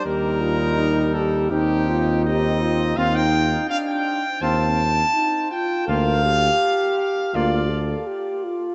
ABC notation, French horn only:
X:1
M:4/4
L:1/8
Q:1/4=82
K:Bb
V:1 name="French horn"
G F E G E F G F | E2 D2 C z E F | B G3 F A G F |]